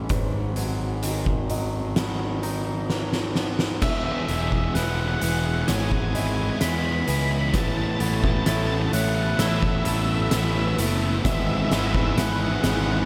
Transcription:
Already playing: G#3 C#4 E4 C#5
0.09 G#1 G#2 B4, kick, closed hi-hat
0.56 F#3, closed hi-hat
1.03 D#3, closed hi-hat
1.26 kick
1.50 F#3 D#5, closed hi-hat
1.96 B3, snare, closed hi-hat
2.43 D#4, closed hi-hat
2.90 F#3 B4, snare
3.13 snare
3.35 B3, snare
3.59 snare
3.82 E1 E3 G#3 B3 E4 G#4 B4 E5 B5, kick, snare, crash
3.90 E5
3.98 E5
4.05 E5
4.12 E5
4.19 E5
4.26 E1 E3 G#3 B3 E4 G#4 E5, closed hi-hat
4.34 E5
4.42 E5
4.48 E5, kick
4.56 E5
4.64 E5
4.75 E1 E3 G#3 B3 E4 G#4 B4 F#5, snare, closed hi-hat
4.83 F#5
4.90 F#5
5.00 F#5
5.08 F#5
5.15 F#5
5.21 E1 E3 G#3 B3 E4 G#4 F#5, closed hi-hat
5.32 F#5
5.39 F#5
5.46 F#5
5.55 F#5
5.62 F#5
5.68 G#1 E3 G#3 B3 E4 G#4 C#5 G#5, snare, closed hi-hat
5.75 G#5
5.83 G#5
5.91 G#5, kick
5.98 G#5
6.05 G#5
6.12 E3 G#3 B3 E4 G#4 D#5 G#5, closed hi-hat
6.20 G#5
6.27 G#5
6.35 G#5
6.42 G#5
6.50 G#5
6.61 E2 E3 G#3 B3 E4 G#4 B5, snare, closed hi-hat
6.70 B5
6.78 B5
6.85 B5
6.93 B5
7.01 B5
7.07 C#2 E3 G#3 B3 E4 G#4 B4 B5, closed hi-hat
7.17 B5
7.25 B5
7.32 B5
7.41 B5
7.49 B5
7.54 A1 A3 B3 E4 A4 B4 A5, kick, snare, closed hi-hat
7.61 A5
7.68 A5
7.77 A5
7.83 A5
7.91 A5
8.00 A1 A3 B3 E4 A4 A5, closed hi-hat
8.08 A5
8.14 A5
8.22 A5, kick
8.30 A5
8.37 A5
8.45 A1 A3 B3 E4 A4 A5, snare, closed hi-hat
8.52 A5
8.59 A5
8.67 A5
8.74 A5
8.82 A5
8.93 A1 A3 B3 E4 A4 C#5 F#5, closed hi-hat
9.01 F#5
9.09 F#5
9.15 F#5
9.23 F#5
9.30 F#5
9.39 A1 A3 B3 E4 A4 E5, snare, closed hi-hat
9.47 E5
9.55 E5
9.62 E5, kick
9.70 E5
9.77 E5
9.85 A1 A3 B3 E4 A4 E5, closed hi-hat
9.93 E5
10.00 E5
10.07 E5
10.15 E5
10.22 E5
10.29 A1 A3 B3 E4 A4 B4 E5, snare, closed hi-hat
10.37 E5
10.44 E5
10.52 E5
10.59 E5
10.67 E5
10.78 F#1 A3 B3 E4 A4, closed hi-hat
11.25 G#1 G#2 E3 G#3 B3 E4 G#4 E5, kick, snare, closed hi-hat
11.33 E5
11.40 E5
11.48 E5
11.57 E5
11.65 E5
11.71 G#1 G#2 E3 G#3 B3 E4 G#4 E5, snare, closed hi-hat
11.81 E5
11.87 E5
11.95 E5, kick
12.04 E5
12.13 E5
12.17 G#1 G#2 E3 G#3 B3 E4 G#4 B4 F#5, snare, closed hi-hat
12.26 F#5
12.33 F#5
12.40 F#5
12.48 F#5
12.55 F#5
12.62 G#1 G#2 E3 G#3 B3 E4 G#4 F#5, snare, closed hi-hat
12.70 F#5
12.76 F#5
12.84 F#5
12.92 F#5
12.99 F#5

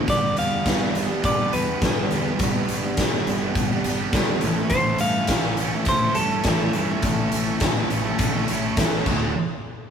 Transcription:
0.08 G1 G2 D3 G3 B3 D4 G4 D5, kick, closed hi-hat
0.36 E2 G3 B3 D4 G4 F5, closed hi-hat
0.51 G3 B3 D4 G4
0.65 G1 G2 D3 G3 B3 D4 G4, kick, snare, closed hi-hat
0.81 G3 B3 D4 G4
0.94 G3 B3 D4, muted steel-string acoustic guitar stroke, closed hi-hat
0.98 G4
1.11 G3 B3 D4 G4
1.24 G2 D5, kick, closed hi-hat
1.39 G3 B3 D4 G4
1.53 E2 G3 B3 D4 G4 B4, closed hi-hat
1.67 G3 B3 D4 G4
1.82 G1 G2 D3 G3 B3 D4 G4, kick, snare, closed hi-hat
1.97 G3 B3 D4 G4
2.11 E2 G3 B3 D4 G4, closed hi-hat
2.26 G3 B3 D4 G4
2.39 G1 G2 D3 G3 B3, kick, closed hi-hat
2.43 D4 G4
2.68 G1 G3 B3 D4 G4, closed hi-hat
2.83 G3 B3 D4 G4
2.97 G1 G2 D3 G3 B3 D4 G4, kick, snare, closed hi-hat
3.12 G3 B3 D4 G4
3.27 G1 G3 B3 D4 G4, muted steel-string acoustic guitar stroke, closed hi-hat
3.42 G3 B3 D4 G4
3.55 G1, kick, closed hi-hat
3.70 G3 B3 D4 G4
3.84 G1 G3 B3, closed hi-hat
3.88 D4 G4
3.99 G3 B3 D4 G4
4.13 G1 G2 D3 G3 B3 D4 G4, kick, snare, closed hi-hat
4.31 G3 B3 D4 G4
4.41 A1 A2 E3 A3 C#4 E4, closed hi-hat
4.45 A4
4.57 A3 C#4 E4 A4
4.70 A1 A2 E3 A3 C#4 E4 A4 C5, kick, closed hi-hat
4.99 G2 A3 F5, closed hi-hat
5.03 C#4 E4 A4
5.16 A3 C#4 A4
5.27 A1 A2 E3, kick, snare, closed hi-hat
5.31 A3 C#4 E4 A4
5.45 A3 C#4 E4 A4
5.57 A3 C#4, muted steel-string acoustic guitar stroke, closed hi-hat
5.61 E4 A4
5.74 A3 C#4 E4 A4
5.85 A2 C5, kick, snare, closed hi-hat
6.02 A3 C#4 E4 A4
6.15 G2 A3 A4, closed hi-hat
6.19 C#4 E4 A4
6.32 A3 C#4 E4 A4
6.44 A1 A2, kick, snare, closed hi-hat
6.48 E3 A3 C#4 E4 A4
6.58 C#4 E4 A4
6.62 A3
6.73 G2 A3, closed hi-hat
6.77 C#4 E4 A4
6.90 A3 C#4 E4 A4
7.02 A1 A2 E3 A3 C#4 E4, kick, closed hi-hat
7.07 A4
7.32 A1 A3 C#4 E4, closed hi-hat
7.36 A4
7.46 A3 C#4 E4 A4
7.60 A1 A2 E3, kick, snare, closed hi-hat
7.64 A3 C#4 E4 A4
7.77 A3 C#4 E4 A4
7.89 A1 A3 C#4 E4 A4, muted steel-string acoustic guitar stroke, closed hi-hat
8.05 A3 C#4 E4 A4
8.19 A1, kick, snare, closed hi-hat
8.34 A3 C#4 E4 A4
8.48 A1 A3 C#4 E4, closed hi-hat
8.52 A4
8.64 A3 C#4 E4 A4
8.77 A1 A2 E3 A3 C#4, kick, snare, closed hi-hat
8.81 E4 A4
8.92 A3 C#4 E4 A4
9.06 D1 D2 A2 D3 A3 F#4, kick, crash

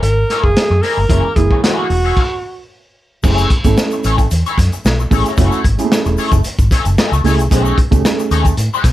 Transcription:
0.03 G#1 A#4, muted clean electric guitar stroke, closed hi-hat
0.30 A#3 E4 G#4 C#5, snare, closed hi-hat
0.44 F#1 G#4, muted clean electric guitar stroke, kick
0.56 muted clean electric guitar stroke, snare, closed hi-hat
0.70 F#2, muted clean electric guitar stroke
0.82 A#3 E4 G#4 A#4 D#5, snare, open hi-hat
0.97 G1, muted clean electric guitar stroke
1.08 F#1 E3 G#3 A#3 C#4 E4 G#4 C#5, kick, closed hi-hat
1.24 muted clean electric guitar stroke
1.36 F#1 E3 G#3 A#3 E4 G#4, muted clean electric guitar stroke, kick, closed hi-hat
1.51 A#3 E4 G#4 C#5, kick
1.63 A#3 E4 F#4 G#4 C#5, snare, closed hi-hat
1.90 E1, muted clean electric guitar stroke, open hi-hat
2.05 A#3 E4 G#4 C#5
2.16 kick, crash
3.23 F#1 A3 C#4 E4 G#4 C#5, kick, crash, shaker
3.38 closed hi-hat, shaker
3.50 kick, closed hi-hat
3.64 G#1 A3 C#4 E4 A4, muted clean electric guitar stroke, kick, closed hi-hat, shaker
3.78 muted clean electric guitar stroke, snare, shaker
3.91 muted clean electric guitar stroke, closed hi-hat, shaker
4.04 A1 A3 E4 G#4 C#5, closed hi-hat, shaker
4.18 muted clean electric guitar stroke, kick, closed hi-hat, shaker
4.31 E2, muted clean electric guitar stroke, closed hi-hat, shaker
4.46 A3 E4 G#4 C#5, closed hi-hat, shaker
4.58 F#2, muted clean electric guitar stroke, kick, snare, closed hi-hat, shaker
4.72 muted clean electric guitar stroke, closed hi-hat, shaker
4.85 B1, muted clean electric guitar stroke, snare, shaker
5.00 muted clean electric guitar stroke, shaker
5.10 A1 A3 C#4 E4 G#4 C#5, kick, open hi-hat, shaker
5.26 A3 E4 G#4 C#5, closed hi-hat, shaker
5.37 F#1 A3 C#4 E4 F#4 G#4 C#5, kick, closed hi-hat, shaker
5.52 closed hi-hat, shaker
5.64 G#1, kick, closed hi-hat
5.77 G#3 C#4 E4 G#4, muted clean electric guitar stroke, closed hi-hat, shaker
5.84 A3
5.92 muted clean electric guitar stroke, snare, shaker
6.06 E1, muted clean electric guitar stroke, closed hi-hat, shaker
6.17 A3 E4 G#4 C#5, open hi-hat, shaker
6.32 F#1, muted clean electric guitar stroke, kick, closed hi-hat, shaker
6.44 muted clean electric guitar stroke, closed hi-hat, shaker
6.59 G#1, kick, closed hi-hat, shaker
6.71 A3 E4 G#4 C#5, kick, snare, closed hi-hat, shaker
6.85 F#1, muted clean electric guitar stroke, closed hi-hat, shaker
6.98 A3 E4 G#4 D#5, snare, shaker
7.12 C#2, muted clean electric guitar stroke, closed hi-hat, shaker
7.24 C#2 A3 C#4 E4 G#4 C#5, snare, open hi-hat, shaker
7.39 C2, muted clean electric guitar stroke, closed hi-hat, shaker
7.50 B1 A3 C#4 D#4 G#4 C#5, kick, closed hi-hat, shaker
7.65 shaker
7.78 kick, closed hi-hat
7.91 C#2 A3 C#4 D#4 G4, muted clean electric guitar stroke, kick, closed hi-hat, shaker
7.99 G#4
8.05 muted clean electric guitar stroke, snare, shaker
8.19 muted clean electric guitar stroke, closed hi-hat, shaker
8.31 D#2 A3 D#4 G#4 C#5, closed hi-hat, shaker
8.45 muted clean electric guitar stroke, kick, closed hi-hat, shaker
8.57 A2, muted clean electric guitar stroke, closed hi-hat, shaker
8.74 A3 D#4 G#4 C#5, shaker
8.84 B2, muted clean electric guitar stroke, kick, snare, closed hi-hat, shaker

